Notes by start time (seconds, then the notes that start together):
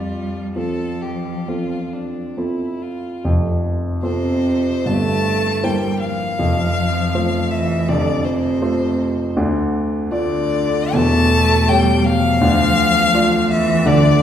Already playing: F2 G3 F4
0.55 F3 C4 F4 A4
1.02 G4
1.48 C4 F4 A4
1.93 D4
2.37 C4 E4 F4 A4
2.82 F4
3.24 F1 F2
4.03 C3 C4 F4 A4 C5
4.86 G1 G2 A3 A5
5.63 G3 A#3 E4 C5 G5
6.00 F3 F5
6.39 F1 F2
7.15 A3 F4 C5
7.51 E3 E5
7.88 F1 F2 D3 D5
8.25 C3 C5
8.61 A3 F4 C5
9.37 D2 D3
10.11 D3 A3 F4 D5
10.93 E1 E2 A3 A5
11.69 G3 A3 G4 C#5 G5
12.04 F3 F5
12.41 D2 D3
13.14 A3 F4 D5
13.51 E3 E5
13.86 D2 D3 D5